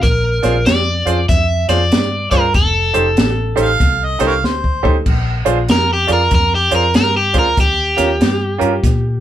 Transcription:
0.03 0.41 A#1 medium
0.03 0.68 A#4 medium
0.03 kick loud
0.03 closed hi-hat medium
0.43 0.65 A#1 medium
0.43 0.55 D4 medium
0.43 0.55 F4 medium
0.43 0.55 G#4 medium
0.43 0.55 C5 medium
0.43 snare soft
0.43 closed hi-hat medium
0.66 1.04 F2 medium
0.66 1.25 D5 medium
0.66 snare loud
0.66 closed hi-hat medium
1.05 1.28 F2 medium
1.05 1.17 D4 medium
1.05 1.18 F4 medium
1.05 1.18 G#4 medium
1.05 1.18 C5 medium
1.05 closed hi-hat medium
1.29 1.66 F2 medium
1.29 1.66 E5 medium
1.29 kick loud
1.29 snare soft
1.29 closed hi-hat medium
1.68 1.90 F2 medium
1.68 1.80 D4 medium
1.68 1.80 F4 medium
1.68 1.80 G#4 medium
1.68 1.81 C5 medium
1.68 2.31 D5 medium
1.68 snare soft
1.68 closed hi-hat medium
1.92 2.29 G2 medium
1.92 snare loud
1.92 closed hi-hat medium
2.31 2.53 G2 medium
2.31 2.43 D4 medium
2.31 2.43 F4 medium
2.31 2.43 G#4 medium
2.31 2.53 A#4 medium
2.31 2.43 C5 medium
2.31 kick medium
2.31 closed hi-hat medium
2.54 2.92 F1 medium
2.54 4.39 A4 medium
2.54 kick loud
2.54 closed hi-hat medium
2.93 3.16 F1 medium
2.93 3.06 D#4 medium
2.93 3.06 G4 medium
2.93 3.06 A4 medium
2.93 3.06 C5 medium
2.93 closed hi-hat medium
3.17 3.55 A1 medium
3.17 snare loud
3.17 closed hi-hat medium
3.56 3.79 A1 medium
3.56 3.68 D#4 medium
3.56 3.68 G4 medium
3.56 3.68 A4 medium
3.56 3.68 C5 medium
3.56 closed hi-hat medium
3.62 4.06 F5 medium
3.80 4.17 C2 medium
3.80 kick loud
3.80 snare soft
3.80 closed hi-hat medium
4.04 4.23 D#5 medium
4.19 4.42 C2 medium
4.19 4.31 D#4 medium
4.19 4.31 G4 medium
4.19 4.32 A4 medium
4.19 4.32 C5 medium
4.19 snare soft
4.19 closed hi-hat medium
4.27 4.34 A#4 medium
4.27 4.33 C#5 medium
4.27 4.47 F5 medium
4.43 4.80 D2 medium
4.43 4.94 C5 medium
4.43 snare medium
4.64 kick medium
4.83 5.05 D2 medium
4.83 4.95 D#4 medium
4.83 4.94 G4 medium
4.83 4.95 A4 medium
4.83 4.95 C5 medium
4.83 kick loud
5.06 5.43 A#1 medium
5.06 kick loud
5.06 crash medium
5.45 5.67 A#1 medium
5.45 5.57 D4 medium
5.45 5.57 F4 medium
5.45 5.57 G#4 medium
5.45 5.57 C5 medium
5.45 closed hi-hat medium
5.69 6.06 F2 medium
5.69 5.90 A#4 medium
5.69 snare loud
5.69 closed hi-hat medium
5.93 6.12 G4 medium
6.07 6.31 F2 medium
6.07 6.20 D4 medium
6.07 6.20 F4 medium
6.07 6.20 G#4 medium
6.07 6.20 D5 medium
6.07 closed hi-hat medium
6.13 6.32 A#4 medium
6.31 6.69 F2 medium
6.31 6.54 A#4 medium
6.31 kick loud
6.31 snare soft
6.31 closed hi-hat medium
6.55 6.74 G4 medium
6.71 6.93 F2 medium
6.71 6.83 D4 medium
6.71 6.83 F4 medium
6.71 6.83 G#4 medium
6.71 6.83 C5 medium
6.71 closed hi-hat medium
6.75 6.95 A#4 medium
6.94 7.32 G2 medium
6.94 7.16 A#4 medium
6.94 snare loud
6.94 closed hi-hat medium
7.17 7.37 G4 medium
7.33 7.56 D2 medium
7.33 7.46 D4 medium
7.33 7.46 F4 medium
7.33 7.46 G#4 medium
7.33 7.46 C5 medium
7.33 kick medium
7.33 closed hi-hat medium
7.39 7.58 A#4 medium
7.57 7.95 D#2 medium
7.57 9.20 G4 loud
7.57 kick loud
7.57 closed hi-hat medium
7.97 8.20 D#2 medium
7.97 8.09 C#4 medium
7.97 8.09 F4 medium
7.97 8.09 G4 medium
7.97 8.09 A#4 medium
7.97 snare soft
7.97 closed hi-hat medium
8.21 8.58 G2 medium
8.21 snare loud
8.21 closed hi-hat medium
8.58 8.82 G2 medium
8.58 8.71 C#4 medium
8.58 8.71 F4 medium
8.58 8.71 G4 medium
8.58 8.71 A#4 medium
8.58 closed hi-hat medium
8.84 9.20 A#2 medium
8.84 kick loud
8.84 snare soft
8.84 closed hi-hat medium

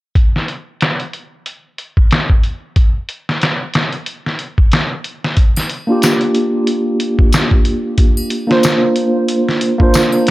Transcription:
0.15 kick medium
0.15 closed hi-hat medium
0.36 snare soft
0.48 closed hi-hat medium
0.81 snare medium
0.81 closed hi-hat medium
1.00 closed hi-hat soft
1.13 closed hi-hat medium
1.46 closed hi-hat medium
1.78 closed hi-hat medium
1.97 kick medium
2.11 snare loud
2.11 closed hi-hat medium
2.30 kick medium
2.43 closed hi-hat medium
2.76 kick medium
2.76 closed hi-hat medium
3.09 closed hi-hat medium
3.29 snare soft
3.41 snare medium
3.41 closed hi-hat medium
3.74 snare medium
3.74 closed hi-hat medium
3.92 closed hi-hat soft
4.06 closed hi-hat medium
4.26 snare soft
4.39 closed hi-hat medium
4.58 kick medium
4.72 snare loud
4.72 closed hi-hat medium
5.04 closed hi-hat medium
5.24 snare soft
5.37 kick medium
5.37 closed hi-hat medium
5.57 snare soft
5.57 triangle medium
5.70 closed hi-hat medium
5.87 8.44 A#3 medium
5.87 8.45 D4 medium
5.87 8.46 F4 medium
5.92 8.47 G4 medium
6.02 snare loud
6.02 closed hi-hat medium
6.02 tambourine medium
6.21 closed hi-hat soft
6.35 closed hi-hat medium
6.67 closed hi-hat medium
7.00 closed hi-hat medium
7.19 kick medium
7.33 snare loud
7.33 closed hi-hat medium
7.33 tambourine medium
7.51 kick medium
7.65 closed hi-hat medium
7.98 kick medium
7.98 closed hi-hat medium
8.17 triangle medium
8.30 closed hi-hat medium
8.47 9.74 A#3 medium
8.47 9.75 D4 medium
8.47 9.76 F4 medium
8.47 snare soft
8.52 9.77 C5 medium
8.63 snare loud
8.63 closed hi-hat medium
8.63 tambourine medium
8.96 closed hi-hat medium
9.28 closed hi-hat medium
9.49 snare soft
9.61 closed hi-hat medium
9.78 10.31 A#3 medium
9.78 10.31 D4 medium
9.78 10.31 F4 medium
9.78 kick medium
9.83 10.31 C5 medium
9.94 snare loud
9.94 closed hi-hat medium
9.94 tambourine medium
10.12 triangle medium
10.27 closed hi-hat medium

